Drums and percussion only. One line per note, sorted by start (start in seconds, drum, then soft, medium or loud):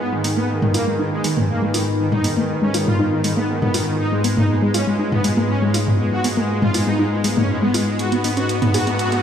0.24 open hi-hat loud
0.62 mid tom medium
0.74 open hi-hat loud
1.24 open hi-hat loud
1.37 mid tom medium
1.74 open hi-hat loud
2.12 mid tom medium
2.24 open hi-hat loud
2.74 open hi-hat loud
2.87 mid tom medium
3.24 open hi-hat loud
3.62 mid tom medium
3.74 open hi-hat loud
4.24 open hi-hat loud
4.37 mid tom medium
4.74 open hi-hat loud
5.12 mid tom medium
5.24 open hi-hat loud
5.74 open hi-hat loud
5.87 mid tom medium
6.24 open hi-hat loud
6.62 mid tom medium
6.74 open hi-hat loud
7.24 open hi-hat loud
7.37 mid tom medium
7.74 open hi-hat loud
7.99 closed hi-hat medium
8.12 closed hi-hat soft
8.24 open hi-hat loud
8.37 closed hi-hat soft
8.49 closed hi-hat medium
8.62 closed hi-hat soft
8.62 mid tom loud
8.74 open hi-hat loud
8.87 closed hi-hat soft
8.99 closed hi-hat medium
9.12 closed hi-hat soft